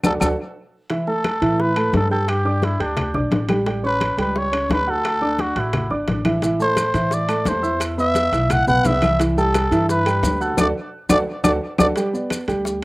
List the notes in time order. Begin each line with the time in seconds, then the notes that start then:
0.03 D2 F#4 A4 D5, low bongo, high conga, high timbale, claves, maracas
0.20 D2 F#4 A4 D5, low bongo, high conga, high timbale, claves, maracas
0.90 E3 E4 E5, high bongo, high conga, high timbale
1.07 A3 A4 A5, high conga
1.24 high bongo, high conga, high timbale, claves
1.41 A2 E3 E4 E5, high conga, high timbale
1.59 B4, high bongo, high conga
1.76 A3 A4 A5, high conga, high timbale, claves
1.93 G2 A4, high bongo, low bongo, high conga, high timbale, low timbale
2.11 G4 A4 G5 G6, high conga
2.28 G4, high bongo, high conga, high timbale, claves
2.45 D4 D5 D6, high bongo, high conga
2.62 E4, high bongo, high conga, high timbale
2.80 D2 D4 G4 G5 G6, high bongo, high timbale
2.97 high bongo, high conga, low conga, high timbale, claves
3.14 B1 D4 D5 D6, high bongo, high conga, low conga
3.31 A1, high bongo, low bongo, high conga, high timbale, low timbale
3.49 G3 G4 G5, high conga, high timbale, claves
3.66 G3 G4 G5, high bongo, high conga, high timbale
3.83 C#4 B4 C#5 C#6, high conga
4.01 high bongo, high conga, high timbale, claves
4.17 C#2 G3 G4 B4 G5, high conga, high timbale
4.36 C#5, high bongo, high conga
4.52 C#4 C#5 C#6, high conga, high timbale, claves
4.69 D2 B4, high bongo, low bongo, high conga, high timbale, low timbale
4.87 F#4 A4 F#5 F#6, high conga
5.04 high bongo, high conga, high timbale, claves
5.21 D4 D5 D6, high bongo, high conga
5.39 F#4, high bongo, high conga, high timbale
5.56 A1 E4 F#4 F#5 F#6, high bongo, high timbale
5.73 high bongo, high conga, low conga, high timbale, claves
5.90 G1 D4 D5 D6, high bongo, high conga
6.08 A1, high bongo, low bongo, high conga, high timbale
6.25 E3 E4 E5, high conga, high timbale, claves
6.42 E3 E4 E5, high bongo, high conga, high timbale, maracas
6.60 A3 A4 C5 A5, high conga, maracas
6.76 high bongo, high conga, high timbale, claves, maracas
6.94 A2 E3 E4 E5, high conga, high timbale, maracas
7.11 D5, high bongo, high conga, maracas
7.28 A3 A4 A5, high conga, high timbale, claves, maracas
7.45 E2 C5, high bongo, low bongo, high conga, high timbale, low timbale, maracas
7.62 E4 E5 E6, high conga, maracas
7.80 high bongo, high conga, high timbale, claves, maracas
7.98 B3 B4 E5 B5, high bongo, high conga, maracas
8.15 high bongo, high conga, high timbale, maracas
8.32 B1 E4 E5 E6, high bongo, high timbale, maracas
8.50 F#5, high bongo, high conga, low conga, high timbale, claves, maracas
8.67 B1 B3 B4 F#5 B5, high bongo, high conga, low conga, maracas
8.84 C2 E5, high bongo, low bongo, high conga, high timbale, low timbale, maracas
9.02 E3 E4 E5, high conga, high timbale, claves, maracas
9.20 E3 E4 E5, high bongo, high conga, high timbale, maracas
9.37 G3 G4 A4 G5, high conga, maracas
9.54 high bongo, high conga, high timbale, claves, maracas
9.71 G2 E3 E4 E5, high conga, high timbale, maracas
9.89 B4, high bongo, high conga, maracas
10.06 G3 G4 G5, high conga, high timbale, claves, maracas
10.23 D2, high bongo, low bongo, high conga, high timbale, low timbale, maracas
10.41 F#4 A4 F#5 F#6, high conga, maracas
10.57 D2 F#4 A4 D5, low bongo, high conga, high timbale, claves, maracas
11.09 D2 F#4 A4 D5, low bongo, high conga, high timbale, claves, maracas
11.44 D2 F#4 A4 D5, low bongo, high conga, high timbale, claves, maracas
11.78 D2 F#4 A4 D5, low bongo, high conga, high timbale, claves, maracas
11.96 G3 G4 G5, high bongo, high conga, high timbale, maracas
12.13 B3 B4 D5, high conga, maracas
12.30 high bongo, high conga, high timbale, claves, maracas
12.48 D2 G3 G4 G5, high conga, high timbale, maracas
12.65 high bongo, high conga, maracas